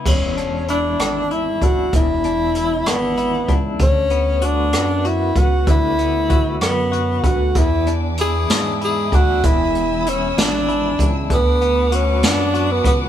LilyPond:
<<
  \new Staff \with { instrumentName = "String section" } { \time 6/8 \key e \mixolydian \tempo 4. = 64 << { r2. | r2. | r2. | r2. |
d'''2. | e'''2. | d'''2. | } \\ { r2. | r2. | r2. | r2. |
<b' e'' gis''>2.~ | <b' e'' gis''>2. | <b' fis'' a''>2. | } >> }
  \new Staff \with { instrumentName = "Clean electric guitar" } { \time 6/8 \key e \mixolydian e,8 d'8 e'8 d'8 e'8 d'8 | e,8 d'8 e'8 d'8 e'8 d'8 | r8 b8 fis'8 b8 fis'8 b8 | d8 b8 fis'8 b8 fis'8 b8 |
e,8 d'8 e'8 d'8 e'8 d'8 | e,4 e'8 d'8 e'8 d'8 | r8 b8 fis'8 b8 fis'8 b8 | }
  \new Staff \with { instrumentName = "Tenor saxophone" } { \time 6/8 \key e \mixolydian cis'4 d'4 e'8 fis'8 | e'4. b4 r8 | cis'4 d'4 e'8 fis'8 | e'4. b4 fis'8 |
e'8 r8 gis'4 gis'8 fis'8 | e'4 cis'8 d'4 r8 | b4 cis'8 d'8. b16 b8 | }
  \new Staff \with { instrumentName = "Analog synth bass" } { \clef bass \time 6/8 \key e \mixolydian e,,4. gis,,4 fis,,8 | e,,4. gis,,4 cis,8 | d,4. fis,4 cis,8 | d,4. fis,4 d,8 |
e,4. gis,4 d,8 | e,,4. gis,,4 cis,8 | d,4. fis,4 cis,8 | }
  \new DrumStaff \with { instrumentName = "Drums" } \drummode { \time 6/8 <cymc bd>8 hh8 hh8 <hh ss>8 hh8 <hh bd>8 | <hh bd>8 hh8 hh8 <hh ss>8 hh8 <hh bd>8 | <hh bd>8 hh8 hh8 <hh ss>8 hh8 <hh bd>8 | <hh bd>8 hh8 <hh bd>8 <hh ss>8 hh8 <hh bd>8 |
<hh bd>8 hh8 hh8 <hh sn>8 hh8 <hh bd>8 | <hh bd>8 hh8 hh8 <hh sn>8 hh8 <hh bd>8 | <hh bd>8 hh8 hh8 <hh sn>8 hh8 <hh bd>8 | }
>>